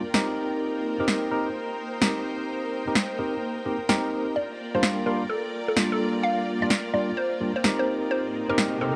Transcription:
0.00 8.96 A#3 medium
0.00 1.98 F4 medium
0.00 8.96 A#4 medium
0.00 1.25 D5 medium
0.00 8.96 G5 medium
0.14 0.96 C4 medium
0.14 0.96 D#4 medium
0.14 0.96 G4 medium
0.14 0.96 A#4 loud
0.14 snare loud
0.38 4.36 D#4 medium
0.70 5.17 C5 medium
1.00 1.29 C4 medium
1.00 1.29 D#4 medium
1.00 1.29 G4 medium
1.00 1.29 A#4 loud
1.08 snare loud
1.31 1.48 C4 medium
1.31 1.48 D#4 medium
1.31 1.48 G4 medium
1.31 1.48 A#4 medium
2.02 2.84 C4 medium
2.02 2.84 D#4 medium
2.02 2.84 G4 medium
2.02 2.84 A#4 medium
2.02 snare loud
2.87 2.93 C4 medium
2.87 2.93 D#4 medium
2.87 2.93 G4 medium
2.87 2.93 A#4 medium
2.95 snare loud
3.19 3.35 C4 medium
3.19 3.35 D#4 medium
3.19 3.35 G4 medium
3.19 3.35 A#4 medium
3.66 3.76 C4 medium
3.66 3.76 D#4 medium
3.66 3.76 G4 medium
3.66 3.76 A#4 medium
3.89 4.35 C4 medium
3.89 4.35 D#4 medium
3.89 4.35 G4 medium
3.89 4.35 A#4 loud
3.89 snare loud
4.36 8.96 F4 medium
4.36 4.54 D5 medium
4.51 8.96 D5 medium
4.75 5.04 G3 medium
4.75 5.04 A#3 medium
4.75 5.04 D4 medium
4.75 5.04 F4 loud
4.75 4.88 C5 medium
4.83 snare loud
5.06 5.23 G3 medium
5.06 5.23 A#3 medium
5.06 5.22 D4 medium
5.06 5.23 F4 medium
5.06 5.20 A#4 medium
5.30 5.48 A4 medium
5.68 5.76 A4 medium
5.77 6.59 G3 medium
5.77 6.59 A#3 medium
5.77 6.59 D4 medium
5.77 6.59 F4 medium
5.77 snare loud
5.92 6.05 A4 medium
6.23 6.42 F5 loud
6.62 6.68 G3 medium
6.62 6.68 A#3 medium
6.62 6.68 D4 medium
6.62 6.68 F4 medium
6.62 6.76 D5 medium
6.70 snare loud
6.94 7.10 G3 medium
6.94 7.10 A#3 medium
6.94 7.10 D4 medium
6.94 7.10 F4 medium
6.94 7.07 D5 medium
7.17 7.35 C5 medium
7.41 7.51 G3 medium
7.41 7.51 A#3 medium
7.41 7.51 D4 medium
7.41 7.51 F4 medium
7.56 7.63 C5 medium
7.64 8.46 C4 medium
7.64 8.46 D#4 medium
7.64 8.46 G4 medium
7.64 8.46 A#4 loud
7.64 snare loud
7.79 7.93 C5 medium
7.88 8.96 D#4 medium
8.11 8.29 C5 medium
8.11 8.96 C5 medium
8.11 riser medium
8.49 8.79 C4 medium
8.49 8.79 D#4 medium
8.49 8.79 G4 medium
8.49 8.63 A#4 medium
8.49 8.79 A#4 loud
8.58 snare loud
8.81 8.96 C4 medium
8.81 8.96 D#4 medium
8.81 8.96 G4 medium
8.81 8.95 A4 medium
8.81 8.96 A#4 medium

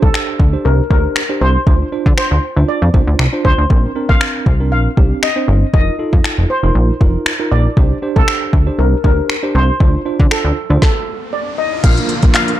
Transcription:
0.00 0.10 C2 medium
0.00 0.38 D4 medium
0.00 0.38 G4 medium
0.00 0.67 A4 medium
0.00 0.39 C5 medium
0.00 kick loud
0.14 finger snap loud
0.39 0.56 D2 medium
0.39 kick medium
0.53 0.83 D4 medium
0.53 0.83 G4 medium
0.53 0.83 C5 medium
0.65 0.81 C2 medium
0.65 0.89 A#4 medium
0.90 1.07 D2 medium
0.90 1.20 D4 medium
0.90 1.21 G4 medium
0.90 1.38 A#4 medium
0.90 1.21 C5 medium
0.90 kick medium
1.16 finger snap loud
1.29 1.59 D4 medium
1.29 1.59 G4 medium
1.29 1.59 C5 medium
1.41 1.57 C2 medium
1.41 2.16 C5 medium
1.67 1.83 D2 medium
1.67 1.87 D4 medium
1.67 1.87 F4 medium
1.67 1.87 C5 medium
1.67 kick loud
1.92 2.42 D4 medium
1.92 2.42 F4 medium
1.92 2.42 C5 medium
2.06 2.13 D3 loud
2.06 kick loud
2.18 2.70 C5 medium
2.18 finger snap loud
2.31 2.39 D2 medium
2.56 2.64 D2 medium
2.56 2.86 D4 medium
2.56 2.86 F4 medium
2.56 2.86 C5 medium
2.69 3.47 D5 medium
2.82 2.90 F2 medium
2.94 3.02 C2 medium
2.94 3.24 D4 medium
2.94 3.24 F4 medium
2.94 3.24 C5 medium
2.94 kick medium
3.07 3.15 D2 medium
3.19 3.28 C2 loud
3.19 finger snap loud
3.33 3.62 D4 medium
3.33 3.62 F4 medium
3.33 3.63 C5 medium
3.45 3.53 D2 medium
3.45 4.05 C5 loud
3.45 kick medium
3.58 3.66 D2 medium
3.70 3.86 A#1 loud
3.70 3.90 C4 medium
3.70 3.90 D4 medium
3.70 3.91 A#4 medium
3.70 kick loud
3.95 4.45 C4 medium
3.95 4.45 D4 medium
3.95 4.45 A#4 medium
4.09 4.17 A#1 loud
4.09 4.71 F5 loud
4.09 kick medium
4.21 finger snap loud
4.46 4.73 C2 medium
4.46 kick medium
4.60 4.89 C4 medium
4.60 4.89 D4 medium
4.60 4.90 A#4 medium
4.72 4.88 A#1 medium
4.72 5.19 F5 medium
4.97 5.13 C2 medium
4.97 5.27 C4 medium
4.97 5.27 D4 medium
4.97 5.27 G4 medium
4.97 kick medium
5.23 5.73 D#5 loud
5.23 finger snap loud
5.36 5.66 C4 medium
5.36 5.66 D4 medium
5.36 5.66 C5 medium
5.48 5.64 G1 medium
5.73 5.90 F1 loud
5.73 5.94 D#4 medium
5.73 5.94 F4 medium
5.73 5.94 A#4 medium
5.73 6.52 D#5 loud
5.73 kick loud
5.99 6.49 D#4 medium
5.99 6.49 F4 medium
5.99 6.49 A4 medium
6.13 6.20 F2 loud
6.13 kick loud
6.24 finger snap loud
6.38 6.45 F1 medium
6.50 7.48 C5 medium
6.63 6.71 F1 medium
6.63 6.93 D#4 medium
6.63 6.93 F4 medium
6.63 6.93 A#4 medium
6.75 6.91 A#1 loud
7.00 7.17 F1 medium
7.00 7.31 D#4 medium
7.00 7.31 F4 medium
7.00 7.31 A#4 medium
7.00 kick loud
7.26 finger snap loud
7.39 7.69 D#4 medium
7.39 7.69 F4 medium
7.39 7.69 A#4 medium
7.52 7.68 A#1 medium
7.52 8.18 D5 loud
7.77 7.93 C2 loud
7.77 7.97 D4 medium
7.77 7.97 G4 medium
7.77 7.97 C5 medium
7.77 kick loud
8.02 8.52 D4 medium
8.02 8.52 G4 medium
8.02 8.52 C5 medium
8.16 8.24 C2 loud
8.16 8.81 A4 medium
8.16 kick loud
8.28 finger snap loud
8.53 8.69 D2 medium
8.53 kick medium
8.67 8.96 D4 medium
8.67 8.96 G4 medium
8.67 8.96 C5 medium
8.79 8.95 C2 medium
8.79 9.03 A#4 medium
9.04 9.20 D2 medium
9.04 9.34 D4 medium
9.04 9.34 G4 medium
9.04 9.51 A#4 medium
9.04 9.34 C5 medium
9.04 kick medium
9.30 finger snap loud
9.43 9.72 D4 medium
9.43 9.73 G4 medium
9.43 9.73 C5 medium
9.55 9.71 C2 medium
9.55 10.34 C5 medium
9.80 9.96 D2 loud
9.80 10.00 D4 medium
9.80 10.01 F4 medium
9.80 10.01 C5 medium
9.80 kick loud
9.80 riser medium
10.05 10.55 D4 medium
10.05 10.55 F4 medium
10.05 10.56 C5 medium
10.20 10.27 D3 loud
10.20 kick medium
10.31 10.81 A4 medium
10.31 finger snap loud
10.45 10.52 D2 medium
10.70 10.78 D2 medium
10.70 10.82 D4 medium
10.70 10.82 F4 medium
10.70 10.82 C5 medium
10.82 11.54 A4 medium
10.82 kick loud
10.82 snare medium
11.33 11.59 D5 medium
11.58 11.70 D#5 medium
11.83 12.00 A#1 loud
11.83 12.60 D3 medium
11.83 12.60 F3 medium
11.83 12.14 A#3 medium
11.83 12.60 A#3 medium
11.83 12.14 D4 medium
11.83 12.60 F4 medium
11.83 12.14 F4 medium
11.83 12.14 A#4 medium
11.83 12.31 F5 loud
11.83 kick loud
11.83 closed hi-hat loud
11.83 crash loud
11.83 downlifter medium
11.97 closed hi-hat soft
12.09 closed hi-hat medium
12.22 12.30 A#1 medium
12.22 12.52 A#3 medium
12.22 12.52 D4 medium
12.22 12.52 F4 medium
12.22 12.52 A#4 medium
12.22 kick loud
12.22 closed hi-hat medium
12.35 12.60 F5 medium
12.35 clap loud
12.35 clap medium
12.35 closed hi-hat medium
12.48 closed hi-hat medium

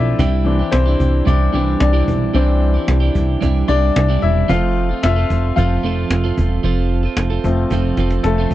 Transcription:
0.00 0.15 B1 medium
0.00 0.15 F3 medium
0.00 0.19 F3 medium
0.00 0.22 A3 medium
0.00 0.19 C4 medium
0.00 0.22 C4 medium
0.00 0.22 D4 medium
0.00 0.69 E4 medium
0.00 0.20 F4 medium
0.00 0.19 A4 medium
0.00 0.22 A4 medium
0.00 0.22 C5 medium
0.00 0.21 D5 loud
0.00 0.75 E5 medium
0.19 0.63 C2 loud
0.19 0.60 C3 medium
0.19 0.60 G3 medium
0.19 0.60 D4 medium
0.19 0.59 E4 medium
0.19 0.58 G4 medium
0.19 cajon bass loud
0.45 0.81 E3 soft
0.45 0.72 C4 soft
0.45 0.82 D4 medium
0.45 cajon slap soft
0.59 0.88 D4 soft
0.59 0.86 E4 soft
0.59 0.85 G4 medium
0.72 0.96 C2 loud
0.72 1.23 C4 medium
0.72 1.22 C5 medium
0.72 cajon slap loud
0.86 1.26 D4 soft
0.86 1.26 E4 soft
0.86 1.27 G4 medium
1.00 1.22 C2 medium
1.00 cajon bass medium
1.25 1.49 C2 loud
1.25 1.51 G3 medium
1.25 1.52 D4 medium
1.25 1.53 D4 medium
1.25 1.54 E4 medium
1.25 1.54 G4 medium
1.25 1.79 D5 medium
1.25 cajon bass medium
1.25 cajon slap soft
1.53 1.76 C2 medium
1.53 1.78 E3 soft
1.53 1.93 G3 medium
1.53 1.78 C4 soft
1.53 1.93 D4 medium
1.53 1.78 D4 medium
1.53 1.92 E4 medium
1.53 1.92 G4 medium
1.53 cajon slap soft
1.80 2.03 C2 loud
1.80 2.31 D4 medium
1.80 2.36 D5 medium
1.80 cajon slap loud
1.93 2.32 C3 medium
1.93 2.33 G3 medium
1.93 2.33 D4 medium
1.93 2.34 E4 medium
1.93 2.34 G4 medium
2.08 2.30 B1 medium
2.08 cajon bass medium
2.34 2.79 C2 loud
2.34 2.74 C3 medium
2.34 3.11 E3 soft
2.34 2.75 G3 medium
2.34 3.39 C4 medium
2.34 2.75 D4 medium
2.34 3.11 D4 medium
2.34 2.74 E4 medium
2.34 2.73 G4 medium
2.34 3.38 C5 medium
2.34 cajon slap soft
2.62 cajon slap soft
2.74 3.02 D4 soft
2.74 3.01 E4 soft
2.74 2.99 G4 medium
2.88 3.10 C2 medium
2.88 cajon slap loud
3.00 3.41 D4 soft
3.00 3.42 E4 soft
3.00 3.41 G4 medium
3.15 3.37 C2 medium
3.15 cajon bass medium
3.41 3.64 C2 medium
3.41 3.67 G3 medium
3.41 3.67 D4 medium
3.41 3.68 E4 medium
3.41 3.69 G4 medium
3.41 cajon bass medium
3.41 cajon slap soft
3.68 3.91 C2 loud
3.68 4.09 G3 medium
3.68 4.09 D4 medium
3.68 4.19 D4 medium
3.68 4.08 E4 medium
3.68 4.07 G4 medium
3.68 4.24 D5 medium
3.68 cajon slap soft
3.96 4.18 C2 loud
3.96 cajon slap loud
4.09 4.50 C3 medium
4.09 4.48 G3 medium
4.09 4.49 D4 medium
4.09 4.49 E4 medium
4.09 4.49 G4 medium
4.22 4.45 E1 medium
4.22 4.30 E4 medium
4.22 4.28 E5 medium
4.22 cajon slap soft
4.48 4.93 F1 loud
4.48 4.89 F3 medium
4.48 6.60 F3 medium
4.48 6.61 A3 soft
4.48 4.89 C4 medium
4.48 6.61 C4 medium
4.48 4.90 F4 loud
4.48 5.00 F4 medium
4.48 4.88 A4 medium
4.48 4.99 F5 medium
4.48 cajon bass loud
4.76 cajon slap soft
4.89 5.18 C4 soft
4.89 5.17 F4 soft
4.89 5.15 A4 medium
5.03 5.25 F1 medium
5.03 5.54 F4 medium
5.03 5.58 E5 loud
5.03 cajon slap loud
5.16 5.56 C4 soft
5.16 5.57 F4 soft
5.16 5.56 A4 medium
5.30 5.52 F1 medium
5.30 cajon bass medium
5.56 5.79 F1 loud
5.56 5.82 F3 medium
5.56 5.83 C4 medium
5.56 5.84 F4 medium
5.56 8.22 F4 medium
5.56 5.85 A4 medium
5.56 8.21 F5 medium
5.56 cajon bass medium
5.56 cajon slap soft
5.83 6.05 F1 loud
5.83 6.24 F3 medium
5.83 6.24 C4 medium
5.83 6.23 F4 medium
5.83 6.23 A4 medium
5.83 cajon slap soft
6.10 6.32 F1 loud
6.10 cajon slap loud
6.24 6.62 F3 medium
6.24 6.63 C4 medium
6.24 6.64 F4 medium
6.24 6.64 A4 medium
6.38 6.59 E1 medium
6.38 cajon bass medium
6.63 7.08 F1 medium
6.63 7.04 F3 medium
6.63 7.04 C4 medium
6.63 7.04 F4 medium
6.63 7.02 A4 medium
6.63 cajon slap soft
6.90 cajon slap soft
7.03 7.32 C4 soft
7.03 7.30 F4 soft
7.03 7.29 A4 medium
7.17 7.40 F1 medium
7.17 cajon slap loud
7.30 7.71 C4 soft
7.30 7.72 F4 soft
7.30 7.71 A4 medium
7.44 7.66 F1 medium
7.44 8.54 F3 soft
7.44 8.24 A3 soft
7.44 8.54 C4 medium
7.44 cajon bass medium
7.70 7.93 F1 medium
7.70 7.96 F3 medium
7.70 7.97 C4 medium
7.70 7.99 F4 medium
7.70 7.99 A4 medium
7.70 cajon bass medium
7.70 cajon slap soft
7.97 8.20 F1 medium
7.97 8.38 F3 medium
7.97 8.39 C4 medium
7.97 8.38 F4 medium
7.97 8.37 A4 medium
7.97 cajon slap medium
8.11 cajon slap medium
8.24 8.47 F1 loud
8.24 8.54 A3 medium
8.24 8.54 A4 medium
8.24 cajon slap medium
8.38 8.54 F3 medium
8.38 8.54 C4 medium
8.38 8.54 F4 medium
8.38 8.54 A4 medium
8.51 8.54 E1 medium
8.51 cajon bass medium

